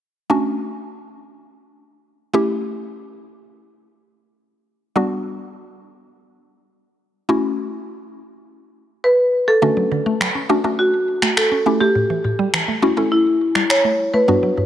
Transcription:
0.30 2.30 A3 medium
0.30 2.30 C#4 medium
0.30 2.30 D4 medium
0.30 2.30 F#4 medium
2.34 4.63 A3 medium
2.34 4.63 C#4 medium
2.34 4.63 E4 medium
2.34 4.63 G4 medium
4.96 7.25 G3 medium
4.96 7.25 B3 medium
4.96 7.25 D4 medium
4.96 7.25 F#4 medium
7.29 9.58 A3 medium
7.29 9.58 C#4 medium
7.29 9.58 E4 medium
7.29 9.59 F#4 medium
9.04 9.45 B4 medium
9.48 10.83 A4 medium
9.62 9.71 D3 medium
9.62 10.15 A3 medium
9.62 10.15 C#4 medium
9.62 10.15 D4 medium
9.62 10.15 F#4 medium
9.77 9.85 F#3 medium
9.92 10.00 D3 medium
10.06 10.14 A3 medium
10.21 10.29 F#3 medium
10.21 finger snap loud
10.35 10.44 C#4 medium
10.49 10.58 A3 loud
10.49 10.58 C#4 medium
10.49 10.58 D4 loud
10.49 10.59 D4 medium
10.49 10.59 F#4 loud
10.64 11.35 A3 medium
10.64 11.35 C#4 medium
10.64 10.73 D4 medium
10.64 11.35 D4 medium
10.64 11.35 F#4 medium
10.79 11.33 F#4 medium
11.22 11.31 A3 medium
11.22 finger snap medium
11.37 11.78 A4 medium
11.37 finger snap loud
11.52 11.60 C#4 medium
11.66 12.59 A3 medium
11.66 12.59 C#4 medium
11.66 12.59 E4 medium
11.66 12.60 G4 medium
11.81 11.89 A3 medium
11.81 13.16 G4 medium
11.95 12.04 A2 medium
12.10 12.18 E3 medium
12.24 12.33 A2 medium
12.39 12.47 G3 medium
12.54 12.62 E3 medium
12.54 finger snap loud
12.68 12.77 A3 medium
12.82 12.91 A3 medium
12.82 12.91 C#4 medium
12.82 12.91 C#4 loud
12.82 12.92 E4 medium
12.82 12.92 F#4 loud
12.97 13.68 A3 medium
12.97 13.68 C#4 medium
12.97 13.06 C#4 medium
12.97 13.68 E4 medium
12.97 13.68 A4 medium
13.12 13.66 E4 medium
13.55 13.64 G3 medium
13.55 finger snap medium
13.70 14.15 C#5 loud
13.70 finger snap loud
13.85 13.93 A3 medium
14.14 14.22 A3 medium
14.14 14.66 B4 loud
14.28 14.37 G2 medium
14.28 14.66 G3 medium
14.28 14.66 B3 medium
14.28 14.66 D4 medium
14.28 14.66 F#4 medium
14.43 14.51 F#3 medium
14.58 14.66 G2 medium

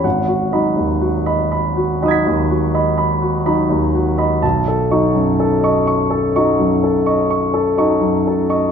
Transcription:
0.04 0.51 G#1 soft
0.04 0.43 F#5 soft
0.28 0.67 F#4 soft
0.52 1.99 F#3 soft
0.52 1.99 D#4 soft
0.52 0.75 D#5 soft
0.52 0.75 B5 soft
0.76 1.17 D#2 soft
1.01 1.42 F#4 soft
1.26 1.49 D#5 soft
1.26 1.50 B5 soft
1.52 1.92 B5 soft
1.77 2.17 F#4 soft
2.02 3.42 F#3 soft
2.02 3.42 D#4 soft
2.02 2.25 D#5 soft
2.02 4.39 F#5 soft
2.02 2.25 B5 soft
2.02 4.40 D#6 soft
2.08 4.42 G#6 soft
2.08 4.43 B6 soft
2.26 2.65 D#2 soft
2.50 2.89 F#4 soft
2.74 2.96 D#5 soft
2.74 2.96 B5 soft
2.98 3.36 B5 soft
3.22 3.60 F#4 soft
3.46 4.39 F#3 soft
3.46 4.39 D#4 soft
3.46 3.67 D#5 soft
3.46 3.67 B5 soft
3.70 4.08 D#2 soft
3.95 4.34 F#4 soft
4.18 4.40 D#5 soft
4.18 4.41 B5 soft
4.42 4.90 B1 soft
4.42 4.82 A5 soft
4.68 5.07 A4 soft
4.91 6.31 F#3 soft
4.91 6.31 D#4 soft
4.91 5.13 D#5 soft
4.91 5.13 C#6 soft
5.15 5.54 F#2 soft
5.40 5.78 A4 soft
5.63 5.85 D#5 soft
5.63 5.86 C#6 soft
5.87 6.26 C#6 soft
6.10 6.49 A4 soft
6.36 7.74 F#3 soft
6.36 7.74 D#4 soft
6.36 6.57 D#5 soft
6.36 6.57 C#6 soft
6.59 6.97 F#2 soft
6.84 7.21 A4 soft
7.06 7.28 D#5 soft
7.06 7.28 C#6 soft
7.30 7.68 C#6 soft
7.54 7.92 A4 soft
7.77 8.72 F#3 soft
7.77 8.72 D#4 soft
7.77 7.99 D#5 soft
7.77 8.00 C#6 soft
8.01 8.41 F#2 soft
8.27 8.66 A4 soft
8.50 8.72 D#5 soft
8.50 8.72 C#6 soft

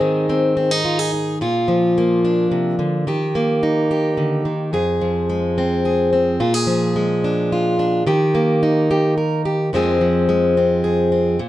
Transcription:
0.00 1.36 G#2 medium
0.00 1.40 D#3 medium
0.00 0.28 C4 medium
0.00 0.56 D#4 medium
0.00 0.84 G#4 medium
0.29 0.56 C4 soft
0.57 0.71 C4 medium
0.71 1.12 D#4 soft
0.85 0.99 F4 soft
0.99 1.40 G#4 soft
1.14 1.37 D#4 soft
1.41 2.51 A#2 medium
1.41 3.07 F4 medium
1.68 3.03 F3 medium
1.98 3.04 A#3 soft
2.25 3.04 D4 soft
2.51 2.78 C3 medium
2.79 3.06 D3 medium
3.07 4.44 D#3 medium
3.07 3.90 G4 medium
3.35 4.70 A#3 medium
3.63 4.70 D#4 soft
3.91 4.70 G4 medium
4.17 4.45 D3 medium
4.45 4.73 D#3 soft
4.73 6.39 F2 medium
4.73 5.84 G#4 medium
5.01 6.37 F3 medium
5.30 6.95 G#3 medium
5.58 6.12 C4 medium
5.85 6.37 G#4 soft
6.13 6.40 C4 medium
6.40 8.06 A#2 medium
6.40 6.54 F4 medium
6.54 7.51 G#4 soft
6.67 8.03 F3 medium
6.96 8.06 G#3 soft
7.24 7.78 D4 soft
7.52 8.07 F4 soft
7.79 8.03 D4 soft
8.07 9.73 D#3 medium
8.07 8.89 G4 medium
8.35 9.70 A#3 medium
8.63 9.70 D#4 soft
8.91 9.17 G4 medium
9.18 9.45 A#4 soft
9.45 9.69 G4 medium
9.73 11.39 F2 medium
9.73 10.00 F3 medium
9.73 10.28 G#3 medium
9.73 10.56 C4 medium
9.73 10.83 G#4 medium
10.01 11.36 F3 medium
10.29 11.39 G#3 soft
10.57 11.11 C4 medium
10.84 11.36 G#4 soft
11.12 11.39 C4 soft
11.39 11.49 A#2 medium

